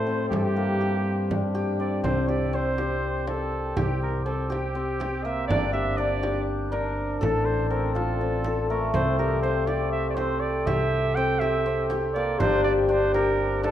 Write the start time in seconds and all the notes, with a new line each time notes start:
Already playing: A2 D4 E4 G4 A4 C5
0.07 C4, frame drum
0.29 G2 G4, frame drum
0.36 A4
0.43 G4
0.56 A#3
0.81 G4
1.31 D4, frame drum
1.55 G4
1.79 C4 D5
2.03 C2 C4 C5, frame drum
2.28 G4 D5, frame drum
2.53 C4 C5
2.78 G4, frame drum
3.27 C4 A4, frame drum
3.52 frame drum
3.77 C2 G4, frame drum
4.02 A#4, frame drum
4.25 C4 A4
4.50 G4, frame drum
4.75 C4
5.00 G4, frame drum
5.24 A#3 E5, frame drum
5.48 G1 D4 D5, frame drum
5.73 G4 E5, frame drum
5.97 D4 D5
6.23 G4, frame drum
6.71 D4 A#4, frame drum
6.97 frame drum
7.20 A1 A4, frame drum
7.45 C5, frame drum
7.69 C4 A#4
7.93 F4 A4, frame drum
8.21 C4
8.45 A4, frame drum
8.69 A3 A#4, frame drum
8.94 C2 C4 A4 C5, frame drum
9.18 G4 A#4, frame drum
9.42 C4 C5
9.66 G4 D5, frame drum
9.92 E5
10.09 D5
10.15 C4 C5, frame drum
10.40 D5, frame drum
10.66 C2 G4 E5, frame drum
10.91 frame drum
11.15 C4 G5
11.39 G4 E5, frame drum
11.66 C4
11.90 G4, frame drum
12.14 A#3 D5, frame drum
12.39 G1 D4 G4 C5, frame drum
12.64 G4 D5, frame drum
12.82 D5
12.89 D4 C5
13.14 G4 A#4, frame drum
13.63 D4 A4, frame drum